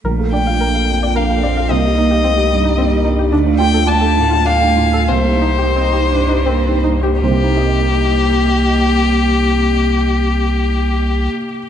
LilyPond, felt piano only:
\new Staff \with { instrumentName = "Felt piano" } { \time 3/4 \key c \dorian \tempo 4 = 92 << { r8 g''4. f''4 | ees''2~ ees''8 r8 | r8 g''8 a''4 f''4 | c''2~ c''8 r8 |
<c, c bes ees' g' c'' ees''>2.~ | <c, c bes ees' g' c'' ees''>2. | } \\ { bes,,16 <f' a'>16 d'16 <f' a'>8 <f' a'>16 f,16 <f' a'>16 d'16 <f' a'>16 f,16 <f' a'>16 | c,16 <ees' g'>16 bes16 <ees' g'>8 <ees' g'>16 g,16 <ees' g'>16 bes16 <ees' g'>16 g,16 <ees' g'>16 | d,16 <d' f'>16 a16 <d' f'>8 <d' f'>16 a,16 <d' f'>16 a16 <d' f'>16 a,16 <d' f'>16 | c,16 <ees' g'>16 bes16 <ees' g'>8 <ees' g'>16 g,16 <ees' g'>16 bes16 <ees' g'>16 g,16 <ees' g'>16 |
r2. | r2. | } >> }